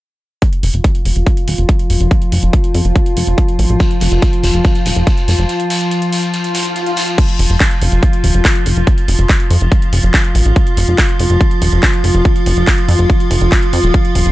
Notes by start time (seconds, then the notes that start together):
0.42 F3 F4, kick, closed hi-hat
0.53 closed hi-hat
0.63 F1, open hi-hat
0.74 F1, closed hi-hat
0.84 kick, closed hi-hat
0.95 closed hi-hat
1.05 F1, open hi-hat
1.16 F1, closed hi-hat
1.27 kick, closed hi-hat
1.37 closed hi-hat
1.48 D#1, open hi-hat
1.58 F1, closed hi-hat
1.69 kick, closed hi-hat
1.79 closed hi-hat
1.90 F1, open hi-hat
2.00 F1, closed hi-hat
2.11 kick, closed hi-hat
2.22 closed hi-hat
2.32 F1, open hi-hat
2.43 F1, closed hi-hat
2.53 kick, closed hi-hat
2.64 closed hi-hat
2.74 F2, open hi-hat
2.85 F1, closed hi-hat
2.96 kick, closed hi-hat
3.06 closed hi-hat
3.17 F1, open hi-hat
3.27 F1, closed hi-hat
3.38 kick, closed hi-hat
3.48 closed hi-hat
3.59 A1, open hi-hat
3.70 A1, closed hi-hat
3.80 kick, closed hi-hat, shekere
3.91 closed hi-hat
4.01 F1, open hi-hat, shekere
4.11 F1, closed hi-hat, shekere
4.22 kick, closed hi-hat, shekere
4.33 closed hi-hat
4.43 F1, open hi-hat, shekere
4.54 F1, closed hi-hat, shekere
4.64 kick, closed hi-hat, shekere
4.74 closed hi-hat, shekere
4.86 D#1, open hi-hat, shekere
4.96 F1, closed hi-hat, shekere
5.07 kick, closed hi-hat, shekere
5.17 closed hi-hat, shekere
5.28 F1, open hi-hat, shekere
5.39 F1, closed hi-hat, shekere
5.49 closed hi-hat, shekere
5.60 closed hi-hat
5.70 open hi-hat, shekere
5.80 closed hi-hat, shekere
5.91 closed hi-hat, shekere
6.02 closed hi-hat, shekere
6.13 open hi-hat, shekere
6.22 closed hi-hat, shekere
6.34 closed hi-hat, swell, shekere
6.44 closed hi-hat, shekere
6.55 open hi-hat, shekere
6.65 closed hi-hat, shekere
6.76 closed hi-hat, shekere
6.86 closed hi-hat, shekere
6.97 open hi-hat, shekere
7.08 closed hi-hat, shekere
7.18 F3 F4, kick, closed hi-hat, crash
7.29 closed hi-hat
7.39 F1, open hi-hat
7.50 F1, closed hi-hat
7.60 kick, clap, closed hi-hat
7.71 closed hi-hat
7.82 F1, open hi-hat
7.92 F1, closed hi-hat
8.03 kick, closed hi-hat
8.13 closed hi-hat
8.24 D#1, open hi-hat
8.34 F1, closed hi-hat
8.45 kick, clap, closed hi-hat
8.55 closed hi-hat
8.66 F1, open hi-hat
8.77 F1, closed hi-hat
8.87 kick, closed hi-hat
8.98 closed hi-hat
9.08 F1, open hi-hat
9.19 F1, closed hi-hat
9.29 kick, clap, closed hi-hat
9.40 closed hi-hat
9.50 F2, open hi-hat
9.61 F1, closed hi-hat
9.72 kick, closed hi-hat
9.82 closed hi-hat
9.93 F1, open hi-hat
10.03 F1, closed hi-hat
10.14 kick, clap, closed hi-hat
10.24 closed hi-hat
10.35 A1, open hi-hat
10.46 A1, closed hi-hat
10.56 kick, closed hi-hat
10.67 closed hi-hat
10.77 F1, open hi-hat
10.88 F1, closed hi-hat
10.98 kick, clap, closed hi-hat
11.09 closed hi-hat
11.19 F1, open hi-hat
11.30 F1, closed hi-hat
11.41 kick, closed hi-hat
11.51 closed hi-hat
11.62 D#1, open hi-hat
11.72 F1, closed hi-hat
11.83 kick, clap, closed hi-hat
11.93 closed hi-hat
12.04 F1, open hi-hat
12.15 F1, closed hi-hat
12.25 kick, closed hi-hat
12.36 closed hi-hat
12.46 F1, open hi-hat
12.57 F1, closed hi-hat
12.67 kick, clap, closed hi-hat
12.78 closed hi-hat
12.88 F2, open hi-hat
12.99 F1, closed hi-hat
13.10 kick, closed hi-hat
13.20 closed hi-hat
13.31 F1, open hi-hat
13.41 F1, closed hi-hat
13.52 kick, clap, closed hi-hat
13.62 closed hi-hat
13.73 F2, open hi-hat
13.84 D#1, closed hi-hat
13.94 kick, closed hi-hat
14.05 closed hi-hat
14.15 D#1, open hi-hat
14.26 D#1, closed hi-hat